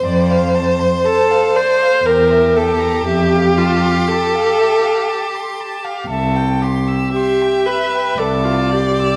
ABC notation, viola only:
X:1
M:3/4
L:1/16
Q:1/4=59
K:Flyd
V:1 name="Viola"
z4 A2 c2 _B2 A2 | G2 F2 A6 z2 | z4 G2 B2 A F G2 |]